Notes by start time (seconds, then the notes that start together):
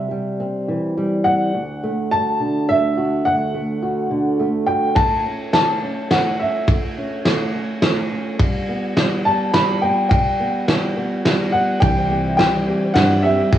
Already playing: C3 G3
0.11 G3
0.40 C4
0.68 E3
0.97 G3
1.24 C4 F#5
1.54 D2
1.83 A3
2.11 F#4 A5
2.40 D3
2.69 A3 E5
2.97 F#4
3.25 D2 F#5
3.54 A3
3.82 F#4
4.11 D3
4.40 A3
4.67 F#4 G5
4.95 A2 A3 A5, kick, ride
5.26 C#4
5.53 E3 A3 A5, snare, ride
5.83 C#4
6.11 E3 A3 F#5, snare, ride
6.40 C#4 E5
6.68 A2 A3, kick, ride
6.98 C#4
7.25 E3 A3, snare, ride
7.55 C#4
7.82 E3 A3, snare, ride
8.12 C#4
8.39 B2 G3, kick, ride
8.69 B3
8.97 E3 G3, snare, ride
9.25 B3 A5
9.54 E3 G3 B5, snare, ride
9.82 B3 G5
10.09 B2 G3 G5, kick, ride
10.40 B3
10.68 E3 G3, snare, ride
10.97 B3
11.25 E3 G3, snare, ride
11.52 B3 F#5
11.80 C2 C3 E3 G3 C4 G4 G5, kick, ride
11.97 C5
12.11 C4 G4
12.25 E5
12.37 E3 G3 C4 G4 G5, snare, ride
12.54 G5
12.67 C4 G4
12.82 C5
12.94 G2 E3 G3 C4 G4 F#5, snare, ride
13.11 E5
13.23 G3 C4 G4 E5
13.40 G5
13.52 C2 C3 E3 G3 C4 G4, kick, ride